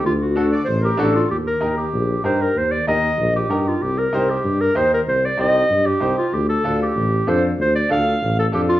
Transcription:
<<
  \new Staff \with { instrumentName = "Accordion" } { \time 4/4 \key ees \lydian \tempo 4 = 191 r4. d''8 c''8 bes'8 a'4 | r1 | r1 | r1 |
r1 | r1 | r1 | }
  \new Staff \with { instrumentName = "Clarinet" } { \time 4/4 \key ees \lydian f'8 fis'4 r4 g'4 f'8 | g'8 bes'4 g'4. c''8 bes'8 | c''8 d''8 ees''4. g'4 f'8 | g'8 bes'4 g'4 bes'8 c''8 bes'8 |
c''8 d''8 ees''4. g'4 f'8 | g'8 a'4 g'4. c''8 r8 | c''8 d''8 f''4. a'8 g'8 f'8 | }
  \new Staff \with { instrumentName = "Upright piano" } { \time 4/4 \key ees \lydian r4 <d' fis' a'>8 r4. <d' fis' a'>8 r8 | r4 <ees' g' bes'>8 r4. <ees' g' bes'>8 r8 | r4 <ees' g' bes'>8 r4. <ees' g' bes'>8 r8 | r4 <ees' g' c''>8 r4. <ees' g' c''>8 r8 |
r4 <ees' g' c''>8 r4. <ees' g' c''>8 r8 | r4 <d' f' a'>8 r4. <d' f' a'>8 r8 | r4 <d' f' a'>8 r4. <d' f' a'>8 r8 | }
  \new Staff \with { instrumentName = "Tuba" } { \clef bass \time 4/4 \key ees \lydian d,2 a,,4 a,,4 | ees,4 ees,4 bes,,4 g,4 | ees,4 ees,4 bes,,4 g,4 | c,4 c,4 g,4 ees,4 |
c,4 c,4 g,4 c,8 r8 | d,4 d,4 a,,4 f,4 | d,4 d,4 a,,4 f,4 | }
>>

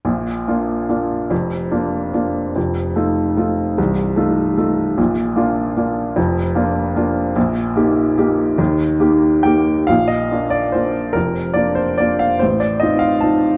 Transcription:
\new Staff \with { instrumentName = "Upright piano" } { \time 3/4 \key bes \major \tempo 4 = 146 << { r2. | r2. | r2. | r2. |
r2. | r2. | r2. | r2 g''4 |
f''8 ees''4 d''8 c''4 | bes'4 d''8 c''8 d''8 f''8 | c''8 d''8 ees''8 f''8 a''4 | } \\ { <bes,, bes,>4 <bes d' f'>4 <bes d' f'>4 | <f,, f,>4 <bes d' f'>4 <bes d' f'>4 | <f,, f,>4 <a ees' f'>4 <a ees' f'>4 | <c,, c,>4 <a ees' f'>4 <a ees' f'>4 |
<bes,, bes,>4 <bes d' f'>4 <bes d' f'>4 | <f,, f,>4 <bes d' f'>4 <bes d' f'>4 | <bes,, bes,>4 <bes ees' g'>4 <bes ees' g'>4 | <ees, ees>4 <bes ees' g'>4 <bes ees' g'>4 |
<bes,, bes,>4 <bes d' f'>4 <bes d' f'>4 | <f,, f,>4 <bes d' f'>4 <bes d' f'>4 | <a,, a,>4 <c' ees' f'>4 <c' ees' f'>4 | } >> }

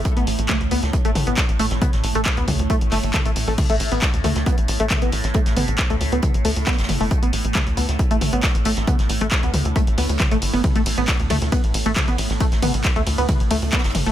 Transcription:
<<
  \new Staff \with { instrumentName = "Synth arpeggio sound" } { \time 4/4 \key d \dorian \tempo 4 = 136 r16 b16 r8 a16 r16 b16 r8 a16 r16 b16 r8 a16 r16 | b16 r8 a16 r16 b16 r8 a16 r16 a16 r16 a'16 a16 r16 a16 | r16 a16 r16 b16 r8 a16 r16 b16 r8 a16 r16 b16 r8 | a16 r16 b16 r8 a16 r16 b16 r8 a16 r16 b16 r8 a16 |
r16 b16 r8 a16 r16 b16 r8 a16 r16 b16 r8 a16 r16 | b16 r8 a16 r16 b16 r8 a16 r16 b16 r8 a16 r16 b16 | r16 a16 r16 b16 r8 a16 r16 b16 r8 a16 r16 b16 r8 | a16 r16 b16 r8 a16 r16 b16 r8 a16 r16 b16 r8 a16 | }
  \new Staff \with { instrumentName = "Synth drone" } { \clef bass \time 4/4 \key d \dorian a,1~ | a,1 | a,1~ | a,1~ |
a,1~ | a,1~ | a,1~ | a,1 | }
  \new Staff \with { instrumentName = "Analog synth bass" } { \clef bass \time 4/4 \key d \dorian r16 a,,16 a,,16 a,,16 r16 d,16 d,16 d,16 r16 a,,16 a,,16 a,,16 r16 a,,16 a,,16 a,,16 | r16 a,,16 a,,16 a,,16 r16 d,16 d,16 d,16 r16 a,,16 g,,16 g,,16 r16 a,,16 a,,16 a,,16 | r16 a,,16 a,,16 a,,16 r16 d,16 d,16 d,16 r16 a,,16 a,,16 a,,16 r16 a,,16 a,,16 a,,16 | r16 a,,16 a,,16 a,,16 r16 d,16 d,16 d,16 r16 a,,16 d,16 d,16 r16 g,,16 g,,16 g,,16 |
r16 a,,16 a,,16 a,,16 r16 d,16 d,16 d,16 r16 a,,16 a,,16 a,,16 r16 a,,16 a,,16 a,,16 | r16 a,,16 a,,16 a,,16 r16 d,16 d,16 d,16 r16 a,,16 d,16 d,16 r16 g,,16 g,,16 g,,16 | r16 a,,16 a,,16 a,,16 r16 d,16 d,16 d,16 r16 a,,16 a,,16 a,,16 r16 a,,16 a,,16 a,,16 | r16 a,,16 a,,16 a,,16 r16 d,16 d,16 d,16 r16 a,,16 d,16 d,16 r16 g,,16 g,,16 g,,16 | }
  \new DrumStaff \with { instrumentName = "Drums" } \drummode { \time 4/4 <hh bd>16 hh16 <hh hho>16 hh16 <hc hh bd sn toml>16 hh16 <hh hho>16 <hh sn>16 <hh bd>16 hh16 <hh hho toml>16 hh16 <hc hh bd sn>16 hh16 <hh hho>16 <hh sn>16 | <hh bd toml>16 <hh sn>16 <hh hho>16 hh16 <hc hh bd sn>16 hh16 <hh hho bd toml>16 hh16 <hh bd>16 hh16 <hc hho>16 hh16 <hc hh bd sn toml>16 hh16 <hh hho>16 <hh hho>16 | <cymc hh bd toml>16 hh16 <hh hho>16 hh16 <hc hh bd sn>16 hh16 <hh hho toml>16 <hh sn>16 <hh bd>16 hh16 <hh hho>16 hh16 <hc hh bd sn toml>16 hh16 <hh hho>16 <hh sn>16 | <hh bd>16 <hh sn>16 <hh hho toml>16 hh16 <hc hh bd sn>16 hh16 <hh hho>16 hh16 <hh bd toml>16 hh16 hho16 hh16 <hc hh bd sn>32 <hh sn>32 <hh sn>32 <hh sn>32 <hh hho toml>16 <hh hho>16 |
<hh bd>16 hh16 <hh hho>16 hh16 <hc hh bd sn toml>16 hh16 <hh hho>16 <hh sn>16 <hh bd>16 hh16 <hh hho toml>16 hh16 <hc hh bd sn>16 hh16 <hh hho>16 <hh sn>16 | <hh bd toml>16 <hh sn>16 <hh hho>16 hh16 <hc hh bd sn>16 hh16 <hh hho toml>16 hh16 <hh bd>16 hh16 hho16 hh16 <hc hh bd sn toml>16 hh16 <hh hho>16 <hh hho>16 | <hh bd cymr toml>16 hh16 <hh hho cymr>16 hh16 <hc hh bd cymr sn>16 hh16 <hh hho cymr toml>16 <hh sn>16 <hh bd cymr>16 hh16 <hh hho cymr>16 hh16 <hc hh bd cymr sn toml>16 hh16 <hh hho cymr>16 <hh sn>16 | <hh bd cymr>16 <hh sn>16 <hh hho cymr toml>16 hh16 <hc hh bd cymr sn>16 hh16 <hh hho cymr>16 hh16 <hh bd cymr toml>16 hh16 <hho cymr>16 hh16 <hc hh bd cymr sn>32 <hh sn>32 <hh sn>32 <hh sn>32 <hh hho cymr toml>16 <hh hho>16 | }
>>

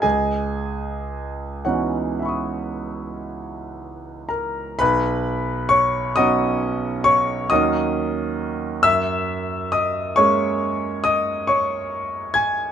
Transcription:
<<
  \new Staff \with { instrumentName = "Grand piano" } { \time 9/8 \key b \major \tempo 4. = 45 << { <gis' dis'' gis''>4. <fis' cis'' fis''>2~ <fis' cis'' fis''>8 <ais' ais''>8 | <b' b''>4 <cis'' cis'''>8 <dis'' dis'''>4 <cis'' cis'''>8 <dis'' dis'''>4. | <e'' e'''>4 <dis'' dis'''>8 <cis'' cis'''>4 <dis'' dis'''>8 <cis'' cis'''>4 <gis'' gis'''>8 | } \\ { r2 <e'' b'' cis''' dis'''>2~ <e'' b'' cis''' dis'''>8 | r1 r8 | r1 r8 | } >> }
  \new Staff \with { instrumentName = "Grand piano" } { \time 9/8 \key b \major cis,4. <e b cis' dis'>2. | b,,4. <fis b cis' dis'>4. <dis, fis ais cis' dis'>4. | fis,4. <gis ais cis' gis'>2. | }
>>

